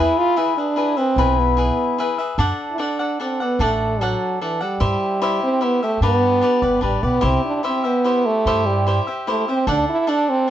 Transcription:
0.00 0.20 E4 medium
0.00 0.35 E4 medium
0.00 0.36 G#4 medium
0.00 0.36 B4 medium
0.00 0.36 E5 medium
0.18 0.39 F4 medium
0.36 0.57 E4 medium
0.36 0.57 G#4 medium
0.36 0.57 B4 medium
0.36 0.57 E5 medium
0.57 0.99 D4 medium
0.57 0.76 G#4 soft
0.57 0.76 B4 soft
0.57 0.76 E5 soft
0.76 0.97 E4 soft
0.76 0.97 G#4 soft
0.76 0.97 B4 soft
0.76 0.96 E5 soft
0.97 1.40 C4 medium
0.97 1.17 G#4 soft
0.97 1.17 B4 soft
0.97 1.16 E5 soft
1.16 1.69 B1 medium
1.16 1.56 E4 medium
1.16 1.57 G#4 medium
1.16 1.57 B4 medium
1.16 1.58 E5 medium
1.39 2.19 B3 medium
1.57 1.97 E4 medium
1.57 1.98 G#4 medium
1.57 1.98 B4 soft
1.57 1.98 E5 medium
1.98 2.19 E4 soft
1.98 2.19 G#4 soft
1.98 2.18 B4 medium
1.98 2.17 E5 medium
2.18 2.38 G#4 soft
2.18 2.38 B4 soft
2.18 2.38 E5 soft
2.38 2.52 F#2 medium
2.38 2.77 D4 medium
2.38 2.78 A4 medium
2.38 2.78 D5 medium
2.38 2.78 F#5 medium
2.71 2.83 E4 medium
2.78 2.99 D4 medium
2.78 3.20 D4 medium
2.78 3.00 A4 medium
2.78 2.99 D5 medium
2.78 2.98 F#5 soft
2.99 3.19 A4 soft
2.99 3.20 D5 soft
2.99 3.19 F#5 soft
3.20 3.44 C4 medium
3.20 3.40 D4 soft
3.20 3.41 A4 soft
3.20 3.40 D5 soft
3.20 3.39 F#5 medium
3.40 3.64 B3 medium
3.40 3.59 A4 soft
3.40 3.60 D5 soft
3.40 3.60 F#5 soft
3.59 4.12 A1 medium
3.59 4.04 A3 medium
3.59 4.00 D4 medium
3.59 4.00 A4 medium
3.59 4.01 D5 medium
3.59 4.01 F#5 medium
4.01 4.41 F#3 medium
4.01 4.40 D4 medium
4.01 4.40 A4 medium
4.01 4.41 D5 medium
4.01 4.41 F#5 medium
4.41 4.64 E3 medium
4.41 4.61 D4 soft
4.41 4.61 A4 medium
4.41 4.60 D5 soft
4.41 4.59 F#5 soft
4.60 5.42 G3 medium
4.60 4.80 A4 soft
4.60 4.80 D5 soft
4.60 4.80 F#5 soft
4.80 4.94 G2 medium
4.80 5.20 E4 medium
4.80 5.21 G4 medium
4.80 5.21 C5 medium
4.80 5.20 E5 medium
5.21 5.59 E4 medium
5.21 5.61 G4 medium
5.21 5.61 C5 medium
5.21 5.60 E5 medium
5.43 5.65 C4 medium
5.61 5.82 B3 medium
5.61 5.81 E4 soft
5.61 5.81 G4 soft
5.61 5.82 C5 soft
5.61 5.81 E5 medium
5.82 6.01 A3 medium
5.82 6.02 G4 soft
5.82 6.02 C5 soft
5.82 6.01 E5 soft
6.01 6.41 G2 medium
6.01 6.79 B3 medium
6.01 6.40 D4 medium
6.01 6.42 G4 medium
6.01 6.41 B4 medium
6.01 6.42 D5 medium
6.41 6.62 D4 medium
6.41 6.63 G4 medium
6.41 6.62 B4 medium
6.41 6.61 D5 medium
6.62 6.80 G1 medium
6.62 6.81 G4 soft
6.62 6.81 B4 soft
6.62 6.82 D5 soft
6.81 7.01 A1 soft
6.81 7.05 G3 medium
6.81 7.02 D4 soft
6.81 7.03 G4 soft
6.81 7.02 B4 soft
6.81 7.02 D5 medium
7.03 7.21 B1 medium
7.03 7.26 B3 medium
7.03 7.20 G4 soft
7.03 7.22 B4 soft
7.03 7.22 D5 soft
7.21 7.37 C2 medium
7.21 7.45 C4 medium
7.21 7.62 E4 medium
7.21 7.63 G4 medium
7.21 7.63 C5 medium
7.21 7.63 E5 medium
7.46 7.63 D4 medium
7.63 7.87 C4 medium
7.63 7.84 E4 soft
7.63 7.85 G4 medium
7.63 7.84 C5 medium
7.63 7.83 E5 medium
7.84 8.27 B3 medium
7.84 8.04 G4 soft
7.84 8.04 C5 soft
7.84 8.04 E5 soft
8.04 8.46 E4 soft
8.04 8.46 G4 medium
8.04 8.46 C5 medium
8.04 8.46 E5 soft
8.26 8.68 A3 medium
8.46 8.98 G2 medium
8.46 8.85 E4 medium
8.46 8.86 G4 medium
8.46 8.86 C5 medium
8.46 8.87 E5 medium
8.67 9.00 G3 medium
8.87 9.07 E4 medium
8.87 9.07 G4 medium
8.87 9.07 C5 medium
8.87 9.06 E5 medium
9.07 9.27 G4 soft
9.07 9.27 C5 soft
9.07 9.27 E5 soft
9.27 9.47 A3 medium
9.27 9.48 E4 medium
9.27 9.48 G4 medium
9.27 9.48 C5 medium
9.27 9.47 E5 medium
9.48 9.66 C4 medium
9.48 9.67 G4 soft
9.48 9.67 C5 soft
9.48 9.67 E5 soft
9.67 9.80 D2 medium
9.67 10.07 D4 medium
9.67 9.87 D4 medium
9.67 10.06 A4 medium
9.67 10.08 D5 medium
9.67 10.08 F#5 medium
9.89 10.11 E4 medium
10.07 10.47 D4 medium
10.07 10.31 D4 medium
10.07 10.47 A4 medium
10.07 10.48 D5 medium
10.07 10.48 F#5 medium
10.30 10.50 C4 loud

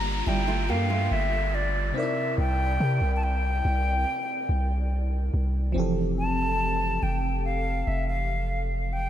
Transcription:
0.00 0.23 G1 loud
0.00 1.90 G3 medium
0.00 1.92 A#3 medium
0.00 1.91 D4 medium
0.00 1.97 F4 medium
0.00 1.92 G4 medium
0.00 0.29 A#5 loud
0.00 downlifter medium
0.26 0.71 G1 loud
0.26 0.47 G3 medium
0.26 0.46 E4 medium
0.26 0.72 G5 medium
0.48 0.68 A3 medium
0.48 0.68 F4 medium
0.69 1.09 G2 medium
0.69 0.89 A#3 medium
0.69 0.89 G4 medium
0.69 1.14 F5 medium
0.90 1.92 A3 medium
0.90 1.91 F4 medium
1.11 1.92 G1 loud
1.11 1.56 E5 medium
1.55 1.98 D5 medium
1.92 5.28 C3 medium
1.92 5.29 C4 medium
1.92 2.02 D#4 soft
1.97 5.31 A#4 medium
1.97 5.31 D5 medium
1.97 2.38 E5 medium
2.02 5.33 E4 medium
2.38 2.78 C2 loud
2.38 3.12 G5 loud
2.80 3.00 C3 loud
3.01 3.62 C2 medium
3.16 3.25 A5 medium
3.23 4.92 G5 medium
3.65 4.05 C2 loud
4.49 5.30 C2 loud
5.34 5.74 C2 loud
5.72 6.99 F1 loud
5.72 9.10 E3 medium
5.72 9.08 F3 medium
5.72 9.09 C4 medium
5.78 9.10 G4 medium
5.78 9.10 A4 medium
6.19 7.04 A5 medium
7.03 7.84 F1 loud
7.03 7.44 G5 medium
7.45 7.89 F5 medium
7.87 9.10 F1 loud
7.87 8.08 E5 medium
8.08 8.94 F5 medium
8.93 9.10 G5 medium

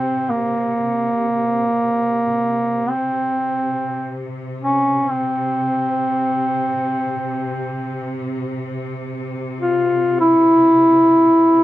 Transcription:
0.00 2.34 C3 soft
0.00 0.31 C4 medium
0.30 2.91 A#3 medium
2.35 11.64 C3 soft
2.89 4.28 C4 medium
4.61 5.11 C#4 medium
5.10 8.20 C4 medium
9.60 10.17 F4 medium
10.20 11.64 E4 medium

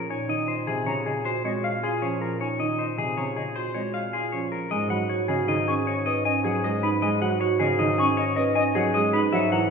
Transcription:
0.09 4.60 A#2 medium
0.09 0.28 D#4 medium
0.09 0.35 C#5 medium
0.09 0.17 G#5 medium
0.29 0.54 D#3 medium
0.29 0.54 D#4 medium
0.29 0.54 D#5 medium
0.48 0.73 C5 medium
0.48 0.56 D#5 medium
0.67 0.93 C3 medium
0.67 0.93 G#4 medium
0.86 1.12 C#3 medium
0.86 1.12 C4 medium
0.86 1.12 C#5 medium
0.86 0.94 A#5 medium
1.06 1.31 G#4 medium
1.06 1.13 D#5 medium
1.25 1.50 F#4 medium
1.25 1.45 C5 medium
1.25 1.33 C6 medium
1.44 1.70 G#3 medium
1.44 1.70 C4 medium
1.44 1.70 C#5 medium
1.44 1.52 D#5 medium
1.64 1.71 F5 medium
1.64 1.89 F5 medium
1.83 2.08 F4 medium
1.83 2.08 G#4 medium
1.83 1.90 C6 medium
2.02 2.27 F3 medium
2.02 2.27 C#4 medium
2.02 2.21 C#5 medium
2.22 2.40 A#4 medium
2.40 2.59 D#4 medium
2.40 2.66 C#5 medium
2.40 2.48 G#5 medium
2.60 2.85 D#3 medium
2.60 2.85 D#4 medium
2.60 2.85 D#5 medium
2.79 2.98 C5 medium
2.79 2.86 D#5 medium
2.98 3.23 C3 medium
2.98 3.23 G#4 medium
3.17 3.43 C#3 medium
3.17 3.43 C4 medium
3.17 3.43 C#5 medium
3.17 3.25 A#5 medium
3.36 3.62 G#4 medium
3.36 3.44 D#5 medium
3.56 3.81 F#4 medium
3.56 3.81 C5 medium
3.56 3.63 C6 medium
3.74 4.00 G#3 medium
3.74 4.00 C4 medium
3.74 4.00 C#5 medium
3.74 3.82 D#5 medium
3.94 4.19 F5 medium
3.94 4.01 F5 medium
4.13 4.39 F4 medium
4.13 4.39 G#4 medium
4.13 4.21 C6 medium
4.32 4.58 F3 medium
4.32 4.58 C#4 medium
4.32 4.58 C#5 soft
4.52 4.77 A#4 medium
4.71 9.22 G#2 medium
4.71 4.96 G#3 medium
4.71 4.90 D#5 medium
4.71 4.79 G#5 medium
4.90 5.16 F#3 medium
4.90 5.09 F#4 medium
4.90 5.16 F#5 medium
4.90 4.98 B5 medium
5.09 5.35 F#4 medium
5.09 5.35 C#5 medium
5.28 5.54 C#3 medium
5.28 5.54 G#4 medium
5.28 5.36 D#5 medium
5.48 5.74 D#3 medium
5.48 5.74 D#4 medium
5.48 5.73 D#5 medium
5.48 5.56 G#5 medium
5.67 5.93 C#4 medium
5.67 5.93 G#4 medium
5.67 5.75 C#6 medium
5.87 6.12 C#5 medium
5.87 5.94 D#5 medium
6.06 6.31 C#4 medium
6.06 6.31 B4 medium
6.06 6.25 D#5 medium
6.06 6.13 D#6 medium
6.25 6.50 C#4 medium
6.25 6.32 D#5 medium
6.25 6.50 G#5 medium
6.44 6.70 F#3 medium
6.44 6.70 G#4 medium
6.44 6.52 F#5 medium
6.64 6.89 G#3 medium
6.64 6.89 G#4 medium
6.64 6.89 D#5 medium
6.64 6.71 D#6 medium
6.83 7.08 D#4 medium
6.83 7.08 B4 medium
6.83 6.90 B5 loud
7.02 7.27 G#3 medium
7.02 7.21 D#5 medium
7.02 7.10 G#5 medium
7.22 7.47 F#3 medium
7.22 7.40 F#4 medium
7.22 7.40 F#5 medium
7.22 7.29 B5 medium
7.41 7.66 F#4 medium
7.41 7.66 C#5 medium
7.60 7.85 C#3 medium
7.60 7.85 G#4 loud
7.60 7.68 D#5 medium
7.79 8.04 D#3 medium
7.79 8.04 D#4 medium
7.79 8.04 D#5 medium
7.79 7.87 G#5 medium
7.98 8.23 C#4 loud
7.98 8.23 G#4 medium
7.98 8.06 C#6 loud
8.17 8.43 C#5 medium
8.17 8.25 D#5 medium
8.36 8.62 C#4 medium
8.36 8.62 B4 medium
8.36 8.62 D#5 medium
8.36 8.44 D#6 medium
8.55 8.81 C#4 loud
8.55 8.63 D#5 loud
8.55 8.81 G#5 medium
8.75 9.00 F#3 loud
8.75 9.00 G#4 loud
8.75 8.83 F#5 medium
8.94 9.20 G#3 medium
8.94 9.20 G#4 medium
8.94 9.19 D#5 medium
8.94 9.02 D#6 medium
9.13 9.39 D#4 loud
9.13 9.39 B4 medium
9.13 9.21 B5 loud
9.33 9.70 G#2 medium
9.33 9.58 F#3 loud
9.33 9.52 E5 loud
9.33 9.40 F#5 loud
9.52 9.70 E3 medium
9.52 9.70 E4 medium
9.52 9.70 F#5 medium
9.52 9.59 A#5 medium

